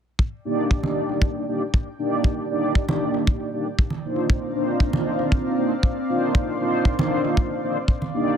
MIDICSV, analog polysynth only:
0, 0, Header, 1, 2, 480
1, 0, Start_track
1, 0, Key_signature, -3, "major"
1, 0, Tempo, 512821
1, 183, Time_signature, 4, 2, 24, 8
1, 7836, End_track
2, 0, Start_track
2, 0, Title_t, "Analog polysynth"
2, 0, Program_c, 0, 90
2, 418, Note_on_c, 0, 58, 82
2, 419, Note_on_c, 0, 62, 72
2, 422, Note_on_c, 0, 63, 75
2, 424, Note_on_c, 0, 67, 74
2, 426, Note_on_c, 0, 74, 90
2, 752, Note_off_c, 0, 58, 0
2, 753, Note_off_c, 0, 62, 0
2, 754, Note_off_c, 0, 63, 0
2, 755, Note_off_c, 0, 67, 0
2, 756, Note_off_c, 0, 74, 0
2, 776, Note_on_c, 0, 58, 73
2, 781, Note_on_c, 0, 62, 67
2, 785, Note_on_c, 0, 63, 69
2, 789, Note_on_c, 0, 67, 67
2, 797, Note_on_c, 0, 74, 80
2, 1351, Note_off_c, 0, 58, 0
2, 1353, Note_off_c, 0, 62, 0
2, 1355, Note_off_c, 0, 63, 0
2, 1357, Note_off_c, 0, 67, 0
2, 1361, Note_off_c, 0, 74, 0
2, 1382, Note_on_c, 0, 58, 73
2, 1384, Note_on_c, 0, 62, 67
2, 1386, Note_on_c, 0, 63, 67
2, 1388, Note_on_c, 0, 67, 66
2, 1391, Note_on_c, 0, 74, 77
2, 1515, Note_off_c, 0, 58, 0
2, 1516, Note_off_c, 0, 62, 0
2, 1517, Note_off_c, 0, 63, 0
2, 1518, Note_off_c, 0, 67, 0
2, 1520, Note_off_c, 0, 74, 0
2, 1857, Note_on_c, 0, 58, 78
2, 1859, Note_on_c, 0, 62, 69
2, 1862, Note_on_c, 0, 63, 67
2, 1863, Note_on_c, 0, 67, 72
2, 1868, Note_on_c, 0, 74, 82
2, 2312, Note_off_c, 0, 58, 0
2, 2313, Note_off_c, 0, 62, 0
2, 2314, Note_off_c, 0, 63, 0
2, 2315, Note_off_c, 0, 67, 0
2, 2317, Note_off_c, 0, 74, 0
2, 2339, Note_on_c, 0, 58, 80
2, 2342, Note_on_c, 0, 62, 73
2, 2343, Note_on_c, 0, 63, 74
2, 2345, Note_on_c, 0, 67, 75
2, 2347, Note_on_c, 0, 74, 90
2, 2673, Note_off_c, 0, 58, 0
2, 2674, Note_off_c, 0, 62, 0
2, 2675, Note_off_c, 0, 63, 0
2, 2676, Note_off_c, 0, 67, 0
2, 2677, Note_off_c, 0, 74, 0
2, 2694, Note_on_c, 0, 58, 78
2, 2701, Note_on_c, 0, 62, 67
2, 2703, Note_on_c, 0, 63, 67
2, 2708, Note_on_c, 0, 67, 68
2, 2713, Note_on_c, 0, 74, 85
2, 3269, Note_off_c, 0, 58, 0
2, 3273, Note_off_c, 0, 62, 0
2, 3274, Note_off_c, 0, 63, 0
2, 3277, Note_off_c, 0, 67, 0
2, 3279, Note_off_c, 0, 74, 0
2, 3300, Note_on_c, 0, 58, 74
2, 3302, Note_on_c, 0, 62, 67
2, 3304, Note_on_c, 0, 63, 66
2, 3306, Note_on_c, 0, 67, 67
2, 3308, Note_on_c, 0, 74, 84
2, 3434, Note_off_c, 0, 58, 0
2, 3435, Note_off_c, 0, 62, 0
2, 3436, Note_off_c, 0, 63, 0
2, 3437, Note_off_c, 0, 67, 0
2, 3438, Note_off_c, 0, 74, 0
2, 3777, Note_on_c, 0, 58, 75
2, 3781, Note_on_c, 0, 62, 69
2, 3783, Note_on_c, 0, 63, 72
2, 3786, Note_on_c, 0, 65, 72
2, 3787, Note_on_c, 0, 72, 86
2, 4231, Note_off_c, 0, 58, 0
2, 4233, Note_off_c, 0, 62, 0
2, 4234, Note_off_c, 0, 63, 0
2, 4236, Note_off_c, 0, 65, 0
2, 4237, Note_off_c, 0, 72, 0
2, 4254, Note_on_c, 0, 58, 81
2, 4257, Note_on_c, 0, 62, 78
2, 4259, Note_on_c, 0, 63, 73
2, 4261, Note_on_c, 0, 65, 71
2, 4264, Note_on_c, 0, 72, 92
2, 4590, Note_off_c, 0, 58, 0
2, 4592, Note_off_c, 0, 62, 0
2, 4593, Note_off_c, 0, 63, 0
2, 4594, Note_off_c, 0, 65, 0
2, 4595, Note_off_c, 0, 72, 0
2, 4616, Note_on_c, 0, 58, 76
2, 4618, Note_on_c, 0, 62, 69
2, 4624, Note_on_c, 0, 63, 70
2, 4630, Note_on_c, 0, 65, 67
2, 4633, Note_on_c, 0, 72, 84
2, 5190, Note_off_c, 0, 58, 0
2, 5192, Note_off_c, 0, 62, 0
2, 5195, Note_off_c, 0, 63, 0
2, 5198, Note_off_c, 0, 65, 0
2, 5199, Note_off_c, 0, 72, 0
2, 5215, Note_on_c, 0, 58, 70
2, 5218, Note_on_c, 0, 62, 69
2, 5221, Note_on_c, 0, 63, 65
2, 5224, Note_on_c, 0, 65, 65
2, 5226, Note_on_c, 0, 72, 79
2, 5352, Note_off_c, 0, 58, 0
2, 5353, Note_off_c, 0, 62, 0
2, 5354, Note_off_c, 0, 63, 0
2, 5356, Note_off_c, 0, 65, 0
2, 5357, Note_off_c, 0, 72, 0
2, 5698, Note_on_c, 0, 58, 75
2, 5700, Note_on_c, 0, 62, 69
2, 5703, Note_on_c, 0, 63, 67
2, 5704, Note_on_c, 0, 65, 69
2, 5708, Note_on_c, 0, 72, 82
2, 6152, Note_off_c, 0, 58, 0
2, 6153, Note_off_c, 0, 62, 0
2, 6154, Note_off_c, 0, 63, 0
2, 6155, Note_off_c, 0, 65, 0
2, 6157, Note_off_c, 0, 72, 0
2, 6178, Note_on_c, 0, 58, 82
2, 6180, Note_on_c, 0, 62, 72
2, 6183, Note_on_c, 0, 63, 72
2, 6186, Note_on_c, 0, 65, 73
2, 6187, Note_on_c, 0, 72, 89
2, 6512, Note_off_c, 0, 58, 0
2, 6513, Note_off_c, 0, 62, 0
2, 6515, Note_off_c, 0, 63, 0
2, 6516, Note_off_c, 0, 65, 0
2, 6517, Note_off_c, 0, 72, 0
2, 6535, Note_on_c, 0, 58, 78
2, 6538, Note_on_c, 0, 62, 70
2, 6544, Note_on_c, 0, 63, 71
2, 6549, Note_on_c, 0, 65, 67
2, 6553, Note_on_c, 0, 72, 83
2, 7110, Note_off_c, 0, 58, 0
2, 7112, Note_off_c, 0, 62, 0
2, 7115, Note_off_c, 0, 63, 0
2, 7117, Note_off_c, 0, 65, 0
2, 7119, Note_off_c, 0, 72, 0
2, 7138, Note_on_c, 0, 58, 73
2, 7141, Note_on_c, 0, 62, 68
2, 7142, Note_on_c, 0, 63, 65
2, 7145, Note_on_c, 0, 65, 69
2, 7145, Note_on_c, 0, 72, 85
2, 7273, Note_off_c, 0, 58, 0
2, 7274, Note_off_c, 0, 62, 0
2, 7275, Note_off_c, 0, 63, 0
2, 7277, Note_off_c, 0, 65, 0
2, 7277, Note_off_c, 0, 72, 0
2, 7617, Note_on_c, 0, 58, 73
2, 7619, Note_on_c, 0, 62, 70
2, 7622, Note_on_c, 0, 63, 69
2, 7625, Note_on_c, 0, 67, 71
2, 7626, Note_on_c, 0, 74, 87
2, 7836, Note_off_c, 0, 58, 0
2, 7836, Note_off_c, 0, 62, 0
2, 7836, Note_off_c, 0, 63, 0
2, 7836, Note_off_c, 0, 67, 0
2, 7836, Note_off_c, 0, 74, 0
2, 7836, End_track
0, 0, End_of_file